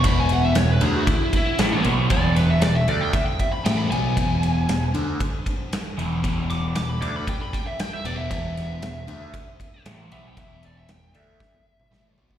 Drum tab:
RD |x-x-x-x-x-x-x-x-|x-x-x-x-x-x-x-x-|x-x-x-x-x-x-x-x-|x-x-x-x-x-x-x-x-|
SD |----o-------o---|--o-o-------o---|----o-------o---|--o-o-------o---|
T1 |----------------|----------------|----------------|----------------|
T2 |----------------|----------------|----------------|----------------|
FT |----------------|----------------|----------------|----------------|
BD |o-------o-o-----|o-------o-o-----|o-------o-o-----|o-------o-o-----|

RD |x-x-x-x-x-x-x-x-|x-x-x-x---------|
SD |--o-o-------o---|----o---o---o---|
T1 |----------------|---------o------|
T2 |----------------|-----------o----|
FT |----------------|--------------o-|
BD |o-------o-o-----|o-------o------o|